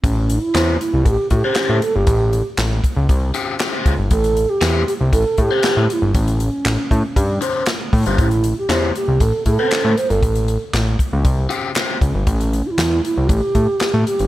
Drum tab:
HH |x-x-x-x-x-x-x-x-|x-x-x-x-x-x-x-x-|xxx-x-x-x-x-x-x-|xxx-x-x-x-x-x-ox|
CP |----x-------x---|----x-------x---|----x-------x---|----x-------x---|
SD |----o-------o---|----o-------o---|----o-------o---|----o-------o---|
BD |o-------o-o-----|o-----o-o-----o-|o-------o-o-----|o-----o-o-----o-|

HH |xxx-x-x-x-x-x-xx|xxx-x-x-x-x-x-x-|xxx-x-x-x-x-x-xx|
CP |----x-------x---|----x-------x---|----x-------x---|
SD |----o-------o---|----o-------o---|----o-------o---|
BD |o-------o-o-----|o-----o-o-----o-|o-------o-o-----|